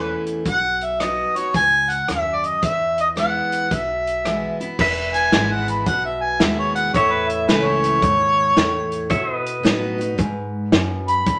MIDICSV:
0, 0, Header, 1, 6, 480
1, 0, Start_track
1, 0, Key_signature, 4, "major"
1, 0, Tempo, 540054
1, 412, Time_signature, 4, 2, 24, 8
1, 10125, End_track
2, 0, Start_track
2, 0, Title_t, "Harmonica"
2, 0, Program_c, 0, 22
2, 0, Note_on_c, 0, 73, 77
2, 8, Note_off_c, 0, 73, 0
2, 8, Note_on_c, 0, 71, 77
2, 213, Note_off_c, 0, 71, 0
2, 434, Note_on_c, 0, 78, 104
2, 746, Note_on_c, 0, 76, 83
2, 760, Note_off_c, 0, 78, 0
2, 898, Note_on_c, 0, 75, 78
2, 911, Note_off_c, 0, 76, 0
2, 1214, Note_on_c, 0, 73, 76
2, 1228, Note_off_c, 0, 75, 0
2, 1377, Note_off_c, 0, 73, 0
2, 1384, Note_on_c, 0, 80, 102
2, 1692, Note_on_c, 0, 78, 86
2, 1705, Note_off_c, 0, 80, 0
2, 1864, Note_on_c, 0, 76, 87
2, 1878, Note_off_c, 0, 78, 0
2, 2088, Note_on_c, 0, 74, 62
2, 2102, Note_off_c, 0, 76, 0
2, 2180, Note_on_c, 0, 75, 77
2, 2193, Note_off_c, 0, 74, 0
2, 2341, Note_off_c, 0, 75, 0
2, 2350, Note_on_c, 0, 76, 97
2, 2635, Note_off_c, 0, 76, 0
2, 2671, Note_on_c, 0, 75, 76
2, 2741, Note_off_c, 0, 75, 0
2, 2843, Note_on_c, 0, 78, 87
2, 3326, Note_on_c, 0, 76, 83
2, 3339, Note_off_c, 0, 78, 0
2, 4106, Note_off_c, 0, 76, 0
2, 4573, Note_on_c, 0, 80, 86
2, 4905, Note_on_c, 0, 78, 83
2, 4919, Note_off_c, 0, 80, 0
2, 5055, Note_off_c, 0, 78, 0
2, 5061, Note_on_c, 0, 83, 77
2, 5210, Note_off_c, 0, 83, 0
2, 5215, Note_on_c, 0, 78, 84
2, 5373, Note_off_c, 0, 78, 0
2, 5377, Note_on_c, 0, 76, 76
2, 5539, Note_on_c, 0, 80, 80
2, 5552, Note_off_c, 0, 76, 0
2, 5695, Note_on_c, 0, 76, 75
2, 5708, Note_off_c, 0, 80, 0
2, 5853, Note_off_c, 0, 76, 0
2, 5860, Note_on_c, 0, 73, 86
2, 5997, Note_off_c, 0, 73, 0
2, 6002, Note_on_c, 0, 78, 91
2, 6161, Note_off_c, 0, 78, 0
2, 6166, Note_on_c, 0, 73, 97
2, 6326, Note_on_c, 0, 71, 87
2, 6339, Note_off_c, 0, 73, 0
2, 6483, Note_on_c, 0, 76, 84
2, 6496, Note_off_c, 0, 71, 0
2, 6641, Note_off_c, 0, 76, 0
2, 6647, Note_on_c, 0, 71, 84
2, 6798, Note_on_c, 0, 73, 113
2, 6811, Note_off_c, 0, 71, 0
2, 8211, Note_off_c, 0, 73, 0
2, 9849, Note_on_c, 0, 83, 99
2, 10125, Note_off_c, 0, 83, 0
2, 10125, End_track
3, 0, Start_track
3, 0, Title_t, "Pedal steel guitar"
3, 0, Program_c, 1, 26
3, 4273, Note_on_c, 1, 71, 66
3, 4280, Note_on_c, 1, 76, 67
3, 6168, Note_off_c, 1, 71, 0
3, 6171, Note_off_c, 1, 76, 0
3, 6185, Note_on_c, 1, 73, 77
3, 6193, Note_on_c, 1, 76, 73
3, 8081, Note_off_c, 1, 73, 0
3, 8085, Note_off_c, 1, 76, 0
3, 8089, Note_on_c, 1, 73, 75
3, 8095, Note_on_c, 1, 76, 74
3, 8273, Note_off_c, 1, 76, 0
3, 8273, Note_on_c, 1, 75, 74
3, 8311, Note_off_c, 1, 73, 0
3, 8311, Note_on_c, 1, 71, 75
3, 9988, Note_off_c, 1, 71, 0
3, 9992, Note_off_c, 1, 75, 0
3, 10125, End_track
4, 0, Start_track
4, 0, Title_t, "Steel-string acoustic guitar"
4, 0, Program_c, 2, 25
4, 0, Note_on_c, 2, 40, 75
4, 0, Note_on_c, 2, 52, 50
4, 0, Note_on_c, 2, 57, 49
4, 0, Note_on_c, 2, 61, 53
4, 0, Note_on_c, 2, 64, 52
4, 378, Note_off_c, 2, 40, 0
4, 388, Note_off_c, 2, 52, 0
4, 394, Note_off_c, 2, 57, 0
4, 395, Note_off_c, 2, 61, 0
4, 401, Note_off_c, 2, 64, 0
4, 402, Note_on_c, 2, 47, 74
4, 889, Note_on_c, 2, 54, 47
4, 898, Note_on_c, 2, 59, 55
4, 899, Note_on_c, 2, 63, 50
4, 905, Note_on_c, 2, 66, 60
4, 1192, Note_off_c, 2, 54, 0
4, 1197, Note_off_c, 2, 59, 0
4, 1197, Note_off_c, 2, 66, 0
4, 1198, Note_off_c, 2, 63, 0
4, 1208, Note_on_c, 2, 66, 49
4, 1225, Note_on_c, 2, 63, 47
4, 1336, Note_off_c, 2, 47, 0
4, 1367, Note_off_c, 2, 66, 0
4, 1370, Note_on_c, 2, 44, 75
4, 1376, Note_off_c, 2, 63, 0
4, 1836, Note_off_c, 2, 44, 0
4, 1857, Note_on_c, 2, 42, 69
4, 2320, Note_off_c, 2, 42, 0
4, 2332, Note_on_c, 2, 40, 77
4, 2805, Note_on_c, 2, 52, 49
4, 2813, Note_on_c, 2, 56, 54
4, 2816, Note_on_c, 2, 59, 54
4, 2827, Note_on_c, 2, 64, 59
4, 3262, Note_off_c, 2, 40, 0
4, 3275, Note_off_c, 2, 52, 0
4, 3279, Note_off_c, 2, 56, 0
4, 3280, Note_off_c, 2, 59, 0
4, 3286, Note_off_c, 2, 64, 0
4, 3298, Note_on_c, 2, 47, 70
4, 3774, Note_on_c, 2, 52, 47
4, 3783, Note_on_c, 2, 56, 52
4, 3786, Note_on_c, 2, 59, 56
4, 3797, Note_on_c, 2, 64, 51
4, 4077, Note_off_c, 2, 52, 0
4, 4080, Note_off_c, 2, 64, 0
4, 4082, Note_off_c, 2, 56, 0
4, 4083, Note_off_c, 2, 59, 0
4, 4091, Note_on_c, 2, 64, 48
4, 4109, Note_on_c, 2, 59, 41
4, 4226, Note_off_c, 2, 47, 0
4, 4252, Note_off_c, 2, 64, 0
4, 4258, Note_on_c, 2, 40, 85
4, 4261, Note_off_c, 2, 59, 0
4, 4733, Note_on_c, 2, 52, 79
4, 4747, Note_on_c, 2, 56, 88
4, 4751, Note_on_c, 2, 59, 93
4, 4757, Note_on_c, 2, 64, 92
4, 5186, Note_off_c, 2, 40, 0
4, 5200, Note_off_c, 2, 52, 0
4, 5207, Note_off_c, 2, 56, 0
4, 5209, Note_off_c, 2, 59, 0
4, 5210, Note_on_c, 2, 47, 84
4, 5212, Note_off_c, 2, 64, 0
4, 5695, Note_on_c, 2, 56, 81
4, 5701, Note_on_c, 2, 59, 75
4, 5709, Note_on_c, 2, 64, 85
4, 6142, Note_off_c, 2, 47, 0
4, 6161, Note_off_c, 2, 56, 0
4, 6164, Note_off_c, 2, 59, 0
4, 6168, Note_off_c, 2, 64, 0
4, 6175, Note_on_c, 2, 45, 85
4, 6652, Note_on_c, 2, 52, 78
4, 6661, Note_on_c, 2, 57, 82
4, 6669, Note_on_c, 2, 61, 97
4, 6674, Note_on_c, 2, 64, 106
4, 7103, Note_off_c, 2, 45, 0
4, 7119, Note_off_c, 2, 52, 0
4, 7123, Note_off_c, 2, 57, 0
4, 7127, Note_off_c, 2, 61, 0
4, 7130, Note_off_c, 2, 64, 0
4, 7140, Note_on_c, 2, 44, 84
4, 7602, Note_off_c, 2, 44, 0
4, 7614, Note_on_c, 2, 45, 80
4, 8079, Note_off_c, 2, 45, 0
4, 8085, Note_on_c, 2, 47, 81
4, 8562, Note_on_c, 2, 54, 84
4, 8572, Note_on_c, 2, 59, 88
4, 8579, Note_on_c, 2, 63, 97
4, 8583, Note_on_c, 2, 66, 89
4, 8862, Note_off_c, 2, 66, 0
4, 8869, Note_off_c, 2, 54, 0
4, 8873, Note_on_c, 2, 66, 58
4, 8874, Note_off_c, 2, 59, 0
4, 8878, Note_off_c, 2, 63, 0
4, 8892, Note_on_c, 2, 63, 51
4, 9016, Note_off_c, 2, 47, 0
4, 9040, Note_off_c, 2, 66, 0
4, 9047, Note_on_c, 2, 44, 84
4, 9050, Note_off_c, 2, 63, 0
4, 9513, Note_off_c, 2, 44, 0
4, 9537, Note_on_c, 2, 42, 85
4, 9997, Note_off_c, 2, 42, 0
4, 10012, Note_on_c, 2, 40, 85
4, 10125, Note_off_c, 2, 40, 0
4, 10125, End_track
5, 0, Start_track
5, 0, Title_t, "Upright bass"
5, 0, Program_c, 3, 32
5, 0, Note_on_c, 3, 28, 70
5, 119, Note_off_c, 3, 28, 0
5, 406, Note_on_c, 3, 35, 77
5, 1084, Note_off_c, 3, 35, 0
5, 1372, Note_on_c, 3, 37, 72
5, 1782, Note_off_c, 3, 37, 0
5, 1860, Note_on_c, 3, 39, 76
5, 2267, Note_off_c, 3, 39, 0
5, 2335, Note_on_c, 3, 40, 69
5, 3012, Note_off_c, 3, 40, 0
5, 3298, Note_on_c, 3, 35, 67
5, 3974, Note_off_c, 3, 35, 0
5, 4259, Note_on_c, 3, 28, 73
5, 4725, Note_off_c, 3, 28, 0
5, 4740, Note_on_c, 3, 32, 90
5, 5206, Note_off_c, 3, 32, 0
5, 5213, Note_on_c, 3, 35, 77
5, 5682, Note_off_c, 3, 35, 0
5, 5698, Note_on_c, 3, 39, 85
5, 6164, Note_off_c, 3, 39, 0
5, 6174, Note_on_c, 3, 40, 81
5, 6642, Note_off_c, 3, 40, 0
5, 6654, Note_on_c, 3, 37, 91
5, 7122, Note_off_c, 3, 37, 0
5, 7129, Note_on_c, 3, 39, 83
5, 7599, Note_off_c, 3, 39, 0
5, 7614, Note_on_c, 3, 40, 91
5, 8081, Note_off_c, 3, 40, 0
5, 8091, Note_on_c, 3, 47, 85
5, 8559, Note_off_c, 3, 47, 0
5, 8573, Note_on_c, 3, 45, 90
5, 9039, Note_off_c, 3, 45, 0
5, 9054, Note_on_c, 3, 44, 90
5, 9519, Note_off_c, 3, 44, 0
5, 9532, Note_on_c, 3, 42, 89
5, 9997, Note_off_c, 3, 42, 0
5, 10013, Note_on_c, 3, 40, 90
5, 10125, Note_off_c, 3, 40, 0
5, 10125, End_track
6, 0, Start_track
6, 0, Title_t, "Drums"
6, 235, Note_on_c, 9, 42, 54
6, 324, Note_off_c, 9, 42, 0
6, 406, Note_on_c, 9, 36, 97
6, 407, Note_on_c, 9, 42, 68
6, 494, Note_off_c, 9, 36, 0
6, 496, Note_off_c, 9, 42, 0
6, 722, Note_on_c, 9, 42, 48
6, 811, Note_off_c, 9, 42, 0
6, 890, Note_on_c, 9, 37, 94
6, 890, Note_on_c, 9, 42, 69
6, 979, Note_off_c, 9, 37, 0
6, 979, Note_off_c, 9, 42, 0
6, 1209, Note_on_c, 9, 42, 54
6, 1297, Note_off_c, 9, 42, 0
6, 1373, Note_on_c, 9, 36, 97
6, 1376, Note_on_c, 9, 42, 66
6, 1461, Note_off_c, 9, 36, 0
6, 1465, Note_off_c, 9, 42, 0
6, 1686, Note_on_c, 9, 42, 58
6, 1775, Note_off_c, 9, 42, 0
6, 1853, Note_on_c, 9, 37, 99
6, 1853, Note_on_c, 9, 42, 67
6, 1942, Note_off_c, 9, 37, 0
6, 1942, Note_off_c, 9, 42, 0
6, 2167, Note_on_c, 9, 42, 50
6, 2256, Note_off_c, 9, 42, 0
6, 2334, Note_on_c, 9, 42, 77
6, 2336, Note_on_c, 9, 36, 101
6, 2423, Note_off_c, 9, 42, 0
6, 2425, Note_off_c, 9, 36, 0
6, 2647, Note_on_c, 9, 42, 51
6, 2736, Note_off_c, 9, 42, 0
6, 2817, Note_on_c, 9, 37, 88
6, 2817, Note_on_c, 9, 42, 70
6, 2906, Note_off_c, 9, 37, 0
6, 2906, Note_off_c, 9, 42, 0
6, 3130, Note_on_c, 9, 42, 64
6, 3219, Note_off_c, 9, 42, 0
6, 3299, Note_on_c, 9, 36, 97
6, 3300, Note_on_c, 9, 42, 79
6, 3388, Note_off_c, 9, 36, 0
6, 3389, Note_off_c, 9, 42, 0
6, 3619, Note_on_c, 9, 42, 55
6, 3708, Note_off_c, 9, 42, 0
6, 3781, Note_on_c, 9, 37, 87
6, 3781, Note_on_c, 9, 42, 74
6, 3870, Note_off_c, 9, 37, 0
6, 3870, Note_off_c, 9, 42, 0
6, 4095, Note_on_c, 9, 42, 54
6, 4184, Note_off_c, 9, 42, 0
6, 4257, Note_on_c, 9, 36, 107
6, 4258, Note_on_c, 9, 49, 98
6, 4346, Note_off_c, 9, 36, 0
6, 4347, Note_off_c, 9, 49, 0
6, 4568, Note_on_c, 9, 42, 60
6, 4657, Note_off_c, 9, 42, 0
6, 4731, Note_on_c, 9, 38, 97
6, 4731, Note_on_c, 9, 42, 54
6, 4820, Note_off_c, 9, 38, 0
6, 4820, Note_off_c, 9, 42, 0
6, 5047, Note_on_c, 9, 42, 62
6, 5136, Note_off_c, 9, 42, 0
6, 5210, Note_on_c, 9, 42, 61
6, 5213, Note_on_c, 9, 36, 109
6, 5299, Note_off_c, 9, 42, 0
6, 5302, Note_off_c, 9, 36, 0
6, 5689, Note_on_c, 9, 38, 101
6, 5689, Note_on_c, 9, 42, 60
6, 5778, Note_off_c, 9, 38, 0
6, 5778, Note_off_c, 9, 42, 0
6, 6005, Note_on_c, 9, 42, 57
6, 6094, Note_off_c, 9, 42, 0
6, 6172, Note_on_c, 9, 36, 107
6, 6173, Note_on_c, 9, 42, 70
6, 6261, Note_off_c, 9, 36, 0
6, 6262, Note_off_c, 9, 42, 0
6, 6485, Note_on_c, 9, 42, 62
6, 6574, Note_off_c, 9, 42, 0
6, 6655, Note_on_c, 9, 38, 92
6, 6655, Note_on_c, 9, 42, 62
6, 6744, Note_off_c, 9, 38, 0
6, 6744, Note_off_c, 9, 42, 0
6, 6965, Note_on_c, 9, 42, 73
6, 7054, Note_off_c, 9, 42, 0
6, 7131, Note_on_c, 9, 42, 66
6, 7132, Note_on_c, 9, 36, 114
6, 7220, Note_off_c, 9, 42, 0
6, 7221, Note_off_c, 9, 36, 0
6, 7615, Note_on_c, 9, 38, 106
6, 7615, Note_on_c, 9, 42, 59
6, 7704, Note_off_c, 9, 38, 0
6, 7704, Note_off_c, 9, 42, 0
6, 7925, Note_on_c, 9, 42, 54
6, 8014, Note_off_c, 9, 42, 0
6, 8093, Note_on_c, 9, 36, 106
6, 8093, Note_on_c, 9, 42, 60
6, 8182, Note_off_c, 9, 36, 0
6, 8182, Note_off_c, 9, 42, 0
6, 8411, Note_on_c, 9, 42, 61
6, 8500, Note_off_c, 9, 42, 0
6, 8578, Note_on_c, 9, 38, 105
6, 8578, Note_on_c, 9, 42, 59
6, 8667, Note_off_c, 9, 38, 0
6, 8667, Note_off_c, 9, 42, 0
6, 8895, Note_on_c, 9, 42, 66
6, 8984, Note_off_c, 9, 42, 0
6, 9055, Note_on_c, 9, 36, 113
6, 9056, Note_on_c, 9, 42, 62
6, 9143, Note_off_c, 9, 36, 0
6, 9145, Note_off_c, 9, 42, 0
6, 9531, Note_on_c, 9, 38, 108
6, 9531, Note_on_c, 9, 42, 55
6, 9620, Note_off_c, 9, 38, 0
6, 9620, Note_off_c, 9, 42, 0
6, 9848, Note_on_c, 9, 42, 54
6, 9937, Note_off_c, 9, 42, 0
6, 10010, Note_on_c, 9, 42, 64
6, 10013, Note_on_c, 9, 36, 121
6, 10099, Note_off_c, 9, 42, 0
6, 10102, Note_off_c, 9, 36, 0
6, 10125, End_track
0, 0, End_of_file